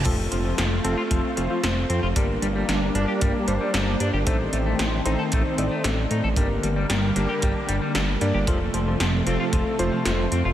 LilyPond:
<<
  \new Staff \with { instrumentName = "Electric grand piano" } { \time 4/4 \key f \mixolydian \tempo 4 = 114 <a c' f' a'>4. <a c' f' a'>4 <a c' f' c''>4. | <bes d' g' bes'>4. <bes d' g' bes'>4 <bes d' g' c''>4. | <c' ees' a' c''>4. <c' ees' a' c''>4 <c' ees' a' d''>4. | <bes d' g' bes'>4. <bes d' g' bes'>4 r4 <bes d' g' d''>8 |
<a c' f' a'>4. <a c' f' a'>4 <a c' f' c''>4. | }
  \new Staff \with { instrumentName = "Analog synth pad" } { \time 4/4 \key f \mixolydian <a c' f'>1 | <g bes d'>1 | <ees a c'>1 | <d g bes>1 |
<c f a>1 | }
  \new Staff \with { instrumentName = "Clean electric guitar" } { \clef bass \time 4/4 \key f \mixolydian f16 r16 f16 f16 f16 r16 c'16 f'16 f16 r16 f16 f16 f16 r16 c'16 f'16 | g16 r16 g16 g16 g16 r16 d'16 g'16 g16 r16 g16 g16 g16 r16 d'16 g'16 | a16 r16 a16 a16 a16 r16 ees'16 a'16 a16 r16 a16 a16 a16 r16 ees'16 a'16 | g16 r16 g16 g16 g16 r16 d'16 g'16 g16 r16 g16 g16 d'16 r16 g16 g'16 |
f16 r16 f16 f16 f16 r16 c'16 f'16 f16 r16 f16 f16 f16 r16 c'16 f'16 | }
  \new Staff \with { instrumentName = "Analog synth bass" } { \clef bass \time 4/4 \key f \mixolydian f,,8 f,,8 f,,8 f,,16 r16 f,,16 r16 f,,16 r16 f,,8 f,16 f,,16 | g,,8 g,,8 g,,8 g,,16 r16 g,,16 r16 g,,16 r16 g,,8 g,16 g,,16 | a,,8 a,,8 a,,8 a,,16 r16 a,,16 r16 a,,16 r16 a,,8 a,16 a,,16 | g,,8 g,,8 g,,8 g,,16 r16 g,,16 r16 g,,16 r16 g,,8 g,16 g,,16 |
f,,8 f,,8 f,,8 f,,16 r16 f,,16 r16 f,,16 r16 f,,8 f,16 f,,16 | }
  \new DrumStaff \with { instrumentName = "Drums" } \drummode { \time 4/4 <cymc hh bd>8 hh8 <hh sn>8 hh8 <hh bd>8 hh8 <hh sn>8 hh8 | <hh bd>8 hh8 <hh sn>8 hh8 <hh bd>8 hh8 <hh sn>8 hh8 | <hh bd>8 hh8 <hh sn>8 hh8 <hh bd>8 hh8 <hh sn>8 hh8 | <hh bd>8 hh8 <hh sn>8 hh8 <hh bd>8 hh8 <hh sn>8 hh8 |
<hh bd>8 hh8 <hh sn>8 hh8 <hh bd>8 hh8 <hh sn>8 hh8 | }
>>